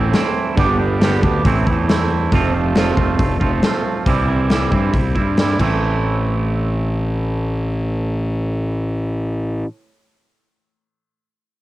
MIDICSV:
0, 0, Header, 1, 4, 480
1, 0, Start_track
1, 0, Key_signature, 0, "minor"
1, 0, Tempo, 436681
1, 634, Time_signature, 4, 2, 24, 8
1, 12771, End_track
2, 0, Start_track
2, 0, Title_t, "Clean electric guitar"
2, 0, Program_c, 0, 27
2, 0, Note_on_c, 0, 45, 86
2, 0, Note_on_c, 0, 52, 75
2, 0, Note_on_c, 0, 57, 51
2, 0, Note_on_c, 0, 60, 64
2, 0, Note_on_c, 0, 64, 59
2, 126, Note_off_c, 0, 52, 0
2, 139, Note_on_c, 0, 52, 67
2, 141, Note_off_c, 0, 57, 0
2, 150, Note_off_c, 0, 45, 0
2, 154, Note_off_c, 0, 60, 0
2, 154, Note_on_c, 0, 57, 58
2, 165, Note_off_c, 0, 64, 0
2, 167, Note_on_c, 0, 60, 77
2, 178, Note_on_c, 0, 64, 69
2, 611, Note_off_c, 0, 52, 0
2, 613, Note_on_c, 0, 43, 87
2, 619, Note_off_c, 0, 57, 0
2, 624, Note_on_c, 0, 50, 84
2, 625, Note_off_c, 0, 60, 0
2, 631, Note_off_c, 0, 64, 0
2, 635, Note_on_c, 0, 55, 91
2, 643, Note_on_c, 0, 59, 91
2, 648, Note_on_c, 0, 62, 92
2, 655, Note_on_c, 0, 67, 87
2, 852, Note_off_c, 0, 67, 0
2, 863, Note_off_c, 0, 62, 0
2, 866, Note_on_c, 0, 67, 59
2, 876, Note_off_c, 0, 59, 0
2, 876, Note_on_c, 0, 62, 58
2, 889, Note_off_c, 0, 55, 0
2, 889, Note_on_c, 0, 59, 57
2, 902, Note_on_c, 0, 55, 59
2, 1090, Note_off_c, 0, 43, 0
2, 1100, Note_off_c, 0, 50, 0
2, 1104, Note_on_c, 0, 43, 77
2, 1107, Note_off_c, 0, 55, 0
2, 1113, Note_off_c, 0, 59, 0
2, 1113, Note_on_c, 0, 50, 75
2, 1120, Note_on_c, 0, 55, 85
2, 1125, Note_off_c, 0, 62, 0
2, 1126, Note_on_c, 0, 59, 78
2, 1129, Note_off_c, 0, 67, 0
2, 1138, Note_on_c, 0, 62, 80
2, 1143, Note_on_c, 0, 67, 87
2, 1334, Note_off_c, 0, 67, 0
2, 1346, Note_off_c, 0, 62, 0
2, 1347, Note_on_c, 0, 67, 56
2, 1359, Note_on_c, 0, 62, 61
2, 1362, Note_off_c, 0, 59, 0
2, 1374, Note_off_c, 0, 55, 0
2, 1375, Note_on_c, 0, 59, 55
2, 1387, Note_on_c, 0, 55, 49
2, 1572, Note_off_c, 0, 43, 0
2, 1574, Note_off_c, 0, 67, 0
2, 1575, Note_off_c, 0, 50, 0
2, 1580, Note_on_c, 0, 45, 71
2, 1581, Note_off_c, 0, 62, 0
2, 1588, Note_off_c, 0, 55, 0
2, 1588, Note_off_c, 0, 59, 0
2, 1592, Note_on_c, 0, 52, 82
2, 1602, Note_on_c, 0, 57, 89
2, 1612, Note_on_c, 0, 60, 94
2, 1617, Note_on_c, 0, 64, 88
2, 1812, Note_off_c, 0, 64, 0
2, 1825, Note_on_c, 0, 64, 66
2, 1841, Note_off_c, 0, 60, 0
2, 1846, Note_on_c, 0, 60, 54
2, 1852, Note_off_c, 0, 57, 0
2, 1866, Note_on_c, 0, 57, 51
2, 2051, Note_off_c, 0, 52, 0
2, 2064, Note_off_c, 0, 45, 0
2, 2064, Note_on_c, 0, 52, 64
2, 2069, Note_off_c, 0, 57, 0
2, 2083, Note_on_c, 0, 57, 69
2, 2090, Note_off_c, 0, 60, 0
2, 2090, Note_off_c, 0, 64, 0
2, 2094, Note_on_c, 0, 60, 76
2, 2103, Note_on_c, 0, 64, 71
2, 2532, Note_off_c, 0, 52, 0
2, 2541, Note_off_c, 0, 57, 0
2, 2545, Note_on_c, 0, 41, 83
2, 2551, Note_off_c, 0, 64, 0
2, 2553, Note_on_c, 0, 48, 86
2, 2561, Note_on_c, 0, 53, 87
2, 2569, Note_on_c, 0, 57, 94
2, 2574, Note_off_c, 0, 60, 0
2, 2578, Note_on_c, 0, 60, 93
2, 2582, Note_on_c, 0, 65, 84
2, 2776, Note_off_c, 0, 65, 0
2, 2789, Note_on_c, 0, 65, 54
2, 2800, Note_off_c, 0, 60, 0
2, 2801, Note_off_c, 0, 57, 0
2, 2804, Note_on_c, 0, 60, 59
2, 2815, Note_off_c, 0, 53, 0
2, 2815, Note_on_c, 0, 57, 57
2, 2828, Note_on_c, 0, 53, 51
2, 3016, Note_off_c, 0, 41, 0
2, 3023, Note_off_c, 0, 48, 0
2, 3029, Note_on_c, 0, 41, 68
2, 3032, Note_off_c, 0, 53, 0
2, 3036, Note_on_c, 0, 48, 78
2, 3038, Note_off_c, 0, 57, 0
2, 3045, Note_on_c, 0, 53, 89
2, 3051, Note_on_c, 0, 57, 86
2, 3056, Note_off_c, 0, 65, 0
2, 3058, Note_off_c, 0, 60, 0
2, 3062, Note_on_c, 0, 60, 88
2, 3069, Note_on_c, 0, 65, 80
2, 3250, Note_off_c, 0, 65, 0
2, 3263, Note_on_c, 0, 65, 68
2, 3272, Note_off_c, 0, 60, 0
2, 3276, Note_on_c, 0, 60, 59
2, 3278, Note_off_c, 0, 57, 0
2, 3289, Note_off_c, 0, 53, 0
2, 3291, Note_on_c, 0, 57, 61
2, 3302, Note_on_c, 0, 53, 47
2, 3508, Note_off_c, 0, 41, 0
2, 3512, Note_off_c, 0, 48, 0
2, 3725, Note_off_c, 0, 65, 0
2, 3738, Note_on_c, 0, 65, 59
2, 3751, Note_off_c, 0, 57, 0
2, 3751, Note_off_c, 0, 60, 0
2, 3756, Note_on_c, 0, 60, 60
2, 3764, Note_on_c, 0, 57, 56
2, 3766, Note_off_c, 0, 53, 0
2, 3779, Note_on_c, 0, 53, 50
2, 3976, Note_off_c, 0, 53, 0
2, 3988, Note_off_c, 0, 57, 0
2, 3989, Note_on_c, 0, 53, 61
2, 4001, Note_on_c, 0, 57, 61
2, 4008, Note_off_c, 0, 60, 0
2, 4012, Note_on_c, 0, 60, 63
2, 4013, Note_off_c, 0, 65, 0
2, 4026, Note_on_c, 0, 65, 70
2, 4454, Note_off_c, 0, 53, 0
2, 4460, Note_off_c, 0, 57, 0
2, 4460, Note_on_c, 0, 48, 80
2, 4470, Note_on_c, 0, 52, 83
2, 4472, Note_off_c, 0, 65, 0
2, 4480, Note_on_c, 0, 55, 82
2, 4487, Note_off_c, 0, 60, 0
2, 4491, Note_on_c, 0, 60, 95
2, 4499, Note_on_c, 0, 64, 78
2, 4692, Note_off_c, 0, 64, 0
2, 4705, Note_on_c, 0, 64, 61
2, 4715, Note_off_c, 0, 60, 0
2, 4728, Note_on_c, 0, 60, 51
2, 4729, Note_off_c, 0, 55, 0
2, 4743, Note_on_c, 0, 55, 40
2, 4931, Note_off_c, 0, 48, 0
2, 4943, Note_off_c, 0, 52, 0
2, 4944, Note_on_c, 0, 48, 70
2, 4952, Note_off_c, 0, 55, 0
2, 4956, Note_on_c, 0, 52, 71
2, 4964, Note_off_c, 0, 60, 0
2, 4966, Note_on_c, 0, 55, 76
2, 4970, Note_off_c, 0, 64, 0
2, 4978, Note_on_c, 0, 60, 73
2, 4983, Note_on_c, 0, 64, 82
2, 5169, Note_off_c, 0, 64, 0
2, 5182, Note_on_c, 0, 64, 63
2, 5191, Note_off_c, 0, 60, 0
2, 5204, Note_on_c, 0, 60, 49
2, 5207, Note_off_c, 0, 55, 0
2, 5220, Note_on_c, 0, 55, 46
2, 5426, Note_off_c, 0, 48, 0
2, 5432, Note_off_c, 0, 52, 0
2, 5648, Note_off_c, 0, 64, 0
2, 5661, Note_on_c, 0, 64, 60
2, 5671, Note_off_c, 0, 60, 0
2, 5684, Note_on_c, 0, 60, 53
2, 5687, Note_off_c, 0, 55, 0
2, 5701, Note_on_c, 0, 55, 48
2, 5911, Note_off_c, 0, 55, 0
2, 5911, Note_on_c, 0, 52, 58
2, 5922, Note_off_c, 0, 60, 0
2, 5924, Note_on_c, 0, 55, 64
2, 5934, Note_off_c, 0, 64, 0
2, 5935, Note_on_c, 0, 60, 59
2, 5948, Note_on_c, 0, 64, 66
2, 6141, Note_on_c, 0, 45, 65
2, 6145, Note_off_c, 0, 52, 0
2, 6157, Note_off_c, 0, 55, 0
2, 6158, Note_on_c, 0, 52, 82
2, 6162, Note_off_c, 0, 60, 0
2, 6167, Note_on_c, 0, 57, 87
2, 6168, Note_off_c, 0, 64, 0
2, 6178, Note_on_c, 0, 60, 83
2, 6190, Note_on_c, 0, 64, 79
2, 10618, Note_off_c, 0, 45, 0
2, 10635, Note_off_c, 0, 52, 0
2, 10643, Note_off_c, 0, 57, 0
2, 10655, Note_off_c, 0, 60, 0
2, 10667, Note_off_c, 0, 64, 0
2, 12771, End_track
3, 0, Start_track
3, 0, Title_t, "Fingered electric bass"
3, 0, Program_c, 1, 33
3, 0, Note_on_c, 1, 33, 83
3, 138, Note_off_c, 1, 33, 0
3, 630, Note_on_c, 1, 31, 84
3, 1310, Note_off_c, 1, 31, 0
3, 1351, Note_on_c, 1, 38, 88
3, 1578, Note_off_c, 1, 38, 0
3, 1592, Note_on_c, 1, 33, 94
3, 1818, Note_off_c, 1, 33, 0
3, 1831, Note_on_c, 1, 40, 76
3, 2510, Note_off_c, 1, 40, 0
3, 2554, Note_on_c, 1, 29, 93
3, 3231, Note_off_c, 1, 29, 0
3, 3263, Note_on_c, 1, 29, 80
3, 3492, Note_off_c, 1, 29, 0
3, 3504, Note_on_c, 1, 29, 79
3, 3733, Note_off_c, 1, 29, 0
3, 3744, Note_on_c, 1, 29, 78
3, 3973, Note_off_c, 1, 29, 0
3, 4463, Note_on_c, 1, 36, 88
3, 5146, Note_off_c, 1, 36, 0
3, 5184, Note_on_c, 1, 43, 71
3, 5413, Note_off_c, 1, 43, 0
3, 5427, Note_on_c, 1, 36, 75
3, 5655, Note_off_c, 1, 36, 0
3, 5670, Note_on_c, 1, 43, 75
3, 6123, Note_off_c, 1, 43, 0
3, 6152, Note_on_c, 1, 33, 76
3, 10585, Note_off_c, 1, 33, 0
3, 12771, End_track
4, 0, Start_track
4, 0, Title_t, "Drums"
4, 147, Note_on_c, 9, 46, 50
4, 152, Note_on_c, 9, 38, 89
4, 257, Note_off_c, 9, 46, 0
4, 262, Note_off_c, 9, 38, 0
4, 630, Note_on_c, 9, 46, 47
4, 632, Note_on_c, 9, 36, 103
4, 740, Note_off_c, 9, 46, 0
4, 742, Note_off_c, 9, 36, 0
4, 1113, Note_on_c, 9, 46, 50
4, 1117, Note_on_c, 9, 38, 99
4, 1223, Note_off_c, 9, 46, 0
4, 1227, Note_off_c, 9, 38, 0
4, 1353, Note_on_c, 9, 36, 76
4, 1463, Note_off_c, 9, 36, 0
4, 1594, Note_on_c, 9, 36, 97
4, 1594, Note_on_c, 9, 46, 46
4, 1704, Note_off_c, 9, 36, 0
4, 1704, Note_off_c, 9, 46, 0
4, 1832, Note_on_c, 9, 36, 62
4, 1942, Note_off_c, 9, 36, 0
4, 2077, Note_on_c, 9, 46, 49
4, 2082, Note_on_c, 9, 38, 98
4, 2187, Note_off_c, 9, 46, 0
4, 2192, Note_off_c, 9, 38, 0
4, 2549, Note_on_c, 9, 46, 49
4, 2552, Note_on_c, 9, 36, 94
4, 2659, Note_off_c, 9, 46, 0
4, 2662, Note_off_c, 9, 36, 0
4, 3025, Note_on_c, 9, 46, 48
4, 3030, Note_on_c, 9, 38, 106
4, 3135, Note_off_c, 9, 46, 0
4, 3140, Note_off_c, 9, 38, 0
4, 3266, Note_on_c, 9, 36, 74
4, 3376, Note_off_c, 9, 36, 0
4, 3506, Note_on_c, 9, 36, 91
4, 3506, Note_on_c, 9, 46, 43
4, 3616, Note_off_c, 9, 36, 0
4, 3616, Note_off_c, 9, 46, 0
4, 3747, Note_on_c, 9, 36, 65
4, 3856, Note_off_c, 9, 36, 0
4, 3982, Note_on_c, 9, 46, 38
4, 3987, Note_on_c, 9, 38, 103
4, 4092, Note_off_c, 9, 46, 0
4, 4097, Note_off_c, 9, 38, 0
4, 4462, Note_on_c, 9, 46, 46
4, 4464, Note_on_c, 9, 36, 91
4, 4572, Note_off_c, 9, 46, 0
4, 4574, Note_off_c, 9, 36, 0
4, 4945, Note_on_c, 9, 46, 44
4, 4949, Note_on_c, 9, 38, 90
4, 5055, Note_off_c, 9, 46, 0
4, 5059, Note_off_c, 9, 38, 0
4, 5187, Note_on_c, 9, 36, 69
4, 5297, Note_off_c, 9, 36, 0
4, 5427, Note_on_c, 9, 36, 86
4, 5428, Note_on_c, 9, 46, 41
4, 5537, Note_off_c, 9, 36, 0
4, 5537, Note_off_c, 9, 46, 0
4, 5668, Note_on_c, 9, 36, 59
4, 5778, Note_off_c, 9, 36, 0
4, 5908, Note_on_c, 9, 46, 43
4, 5912, Note_on_c, 9, 38, 97
4, 6018, Note_off_c, 9, 46, 0
4, 6022, Note_off_c, 9, 38, 0
4, 6151, Note_on_c, 9, 36, 68
4, 6153, Note_on_c, 9, 49, 67
4, 6261, Note_off_c, 9, 36, 0
4, 6263, Note_off_c, 9, 49, 0
4, 12771, End_track
0, 0, End_of_file